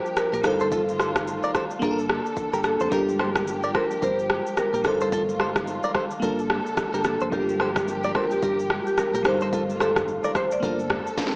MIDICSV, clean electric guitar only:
0, 0, Header, 1, 2, 480
1, 0, Start_track
1, 0, Key_signature, -2, "minor"
1, 0, Tempo, 550459
1, 627, Time_signature, 4, 2, 24, 8
1, 9902, End_track
2, 0, Start_track
2, 0, Title_t, "Clean electric guitar"
2, 0, Program_c, 0, 27
2, 293, Note_on_c, 0, 70, 74
2, 300, Note_on_c, 0, 67, 58
2, 349, Note_off_c, 0, 70, 0
2, 353, Note_off_c, 0, 67, 0
2, 533, Note_on_c, 0, 72, 81
2, 541, Note_on_c, 0, 69, 65
2, 589, Note_off_c, 0, 72, 0
2, 594, Note_off_c, 0, 69, 0
2, 633, Note_on_c, 0, 69, 99
2, 640, Note_on_c, 0, 65, 75
2, 710, Note_off_c, 0, 69, 0
2, 715, Note_off_c, 0, 65, 0
2, 873, Note_on_c, 0, 72, 80
2, 879, Note_on_c, 0, 69, 63
2, 950, Note_off_c, 0, 72, 0
2, 955, Note_off_c, 0, 69, 0
2, 1253, Note_on_c, 0, 74, 75
2, 1259, Note_on_c, 0, 70, 58
2, 1308, Note_off_c, 0, 74, 0
2, 1313, Note_off_c, 0, 70, 0
2, 1353, Note_on_c, 0, 72, 82
2, 1360, Note_on_c, 0, 69, 63
2, 1431, Note_off_c, 0, 72, 0
2, 1436, Note_off_c, 0, 69, 0
2, 1593, Note_on_c, 0, 70, 73
2, 1601, Note_on_c, 0, 65, 58
2, 1728, Note_off_c, 0, 70, 0
2, 1733, Note_off_c, 0, 65, 0
2, 2212, Note_on_c, 0, 70, 76
2, 2219, Note_on_c, 0, 67, 58
2, 2268, Note_off_c, 0, 70, 0
2, 2273, Note_off_c, 0, 67, 0
2, 2451, Note_on_c, 0, 72, 82
2, 2459, Note_on_c, 0, 69, 64
2, 2507, Note_off_c, 0, 72, 0
2, 2512, Note_off_c, 0, 69, 0
2, 2551, Note_on_c, 0, 70, 100
2, 2559, Note_on_c, 0, 67, 77
2, 2629, Note_off_c, 0, 70, 0
2, 2635, Note_off_c, 0, 67, 0
2, 2792, Note_on_c, 0, 72, 79
2, 2799, Note_on_c, 0, 69, 64
2, 2870, Note_off_c, 0, 72, 0
2, 2875, Note_off_c, 0, 69, 0
2, 3171, Note_on_c, 0, 74, 74
2, 3179, Note_on_c, 0, 70, 60
2, 3227, Note_off_c, 0, 74, 0
2, 3233, Note_off_c, 0, 70, 0
2, 3271, Note_on_c, 0, 72, 83
2, 3279, Note_on_c, 0, 69, 64
2, 3349, Note_off_c, 0, 72, 0
2, 3354, Note_off_c, 0, 69, 0
2, 3512, Note_on_c, 0, 70, 78
2, 3518, Note_on_c, 0, 67, 58
2, 3647, Note_off_c, 0, 70, 0
2, 3652, Note_off_c, 0, 67, 0
2, 4132, Note_on_c, 0, 70, 73
2, 4139, Note_on_c, 0, 67, 55
2, 4188, Note_off_c, 0, 70, 0
2, 4193, Note_off_c, 0, 67, 0
2, 4373, Note_on_c, 0, 72, 82
2, 4379, Note_on_c, 0, 69, 61
2, 4428, Note_off_c, 0, 72, 0
2, 4433, Note_off_c, 0, 69, 0
2, 4474, Note_on_c, 0, 69, 100
2, 4481, Note_on_c, 0, 65, 75
2, 4551, Note_off_c, 0, 69, 0
2, 4556, Note_off_c, 0, 65, 0
2, 4713, Note_on_c, 0, 72, 81
2, 4721, Note_on_c, 0, 69, 63
2, 4791, Note_off_c, 0, 72, 0
2, 4796, Note_off_c, 0, 69, 0
2, 5093, Note_on_c, 0, 74, 73
2, 5100, Note_on_c, 0, 70, 59
2, 5148, Note_off_c, 0, 74, 0
2, 5153, Note_off_c, 0, 70, 0
2, 5193, Note_on_c, 0, 72, 83
2, 5199, Note_on_c, 0, 69, 64
2, 5270, Note_off_c, 0, 72, 0
2, 5275, Note_off_c, 0, 69, 0
2, 5434, Note_on_c, 0, 70, 73
2, 5441, Note_on_c, 0, 65, 60
2, 5569, Note_off_c, 0, 70, 0
2, 5573, Note_off_c, 0, 65, 0
2, 6053, Note_on_c, 0, 70, 74
2, 6060, Note_on_c, 0, 67, 58
2, 6109, Note_off_c, 0, 70, 0
2, 6114, Note_off_c, 0, 67, 0
2, 6294, Note_on_c, 0, 72, 82
2, 6301, Note_on_c, 0, 69, 63
2, 6349, Note_off_c, 0, 72, 0
2, 6354, Note_off_c, 0, 69, 0
2, 6393, Note_on_c, 0, 70, 99
2, 6400, Note_on_c, 0, 67, 81
2, 6471, Note_off_c, 0, 70, 0
2, 6476, Note_off_c, 0, 67, 0
2, 6634, Note_on_c, 0, 72, 77
2, 6641, Note_on_c, 0, 69, 63
2, 6711, Note_off_c, 0, 72, 0
2, 6716, Note_off_c, 0, 69, 0
2, 7013, Note_on_c, 0, 74, 79
2, 7021, Note_on_c, 0, 70, 63
2, 7069, Note_off_c, 0, 74, 0
2, 7074, Note_off_c, 0, 70, 0
2, 7114, Note_on_c, 0, 72, 80
2, 7122, Note_on_c, 0, 69, 64
2, 7192, Note_off_c, 0, 72, 0
2, 7197, Note_off_c, 0, 69, 0
2, 7354, Note_on_c, 0, 70, 76
2, 7362, Note_on_c, 0, 67, 58
2, 7489, Note_off_c, 0, 70, 0
2, 7494, Note_off_c, 0, 67, 0
2, 7974, Note_on_c, 0, 70, 72
2, 7981, Note_on_c, 0, 67, 60
2, 8029, Note_off_c, 0, 70, 0
2, 8034, Note_off_c, 0, 67, 0
2, 8212, Note_on_c, 0, 72, 78
2, 8220, Note_on_c, 0, 69, 65
2, 8268, Note_off_c, 0, 72, 0
2, 8274, Note_off_c, 0, 69, 0
2, 8313, Note_on_c, 0, 69, 97
2, 8320, Note_on_c, 0, 65, 77
2, 8391, Note_off_c, 0, 69, 0
2, 8396, Note_off_c, 0, 65, 0
2, 8554, Note_on_c, 0, 72, 78
2, 8561, Note_on_c, 0, 69, 62
2, 8631, Note_off_c, 0, 72, 0
2, 8636, Note_off_c, 0, 69, 0
2, 8933, Note_on_c, 0, 74, 79
2, 8940, Note_on_c, 0, 70, 60
2, 8988, Note_off_c, 0, 74, 0
2, 8993, Note_off_c, 0, 70, 0
2, 9033, Note_on_c, 0, 72, 81
2, 9040, Note_on_c, 0, 69, 63
2, 9110, Note_off_c, 0, 72, 0
2, 9115, Note_off_c, 0, 69, 0
2, 9273, Note_on_c, 0, 70, 73
2, 9280, Note_on_c, 0, 65, 58
2, 9408, Note_off_c, 0, 70, 0
2, 9413, Note_off_c, 0, 65, 0
2, 9902, End_track
0, 0, End_of_file